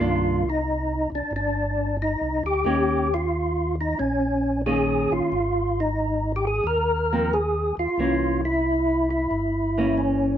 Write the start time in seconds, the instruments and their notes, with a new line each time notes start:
Already playing: tonewheel organ G2 F4
0.00 tonewheel organ C2, hollow-body jazz guitar D#3 A#3 D4
0.50 tonewheel organ D#4
1.12 tonewheel organ C2 D4
1.31 tonewheel organ G1
1.36 tonewheel organ D4
2.02 tonewheel organ D#4
2.21 tonewheel organ C2
2.44 tonewheel organ D2 G4
2.64 tonewheel organ D#2, hollow-body jazz guitar D#3 A#3 C#4 G4
3.14 tonewheel organ F4
3.81 tonewheel organ D#4
3.99 tonewheel organ A#1 C#4
4.66 hollow-body jazz guitar D#3 A#3 C#4, tonewheel organ G#4
5.11 tonewheel organ A#1 F4
5.32 tonewheel organ G#1
5.80 tonewheel organ D#4
6.36 tonewheel organ G4
6.47 tonewheel organ G#4
6.64 tonewheel organ D#2 A#4
7.13 hollow-body jazz guitar F3 A#3 C4
7.33 tonewheel organ G#4
7.77 tonewheel organ D#2 F4
7.98 tonewheel organ C2, hollow-body jazz guitar E3 A#3 C#4
8.45 tonewheel organ E4
9.11 tonewheel organ E4
9.31 tonewheel organ G1
9.78 hollow-body jazz guitar E3 A#3 C#4
9.98 tonewheel organ C#4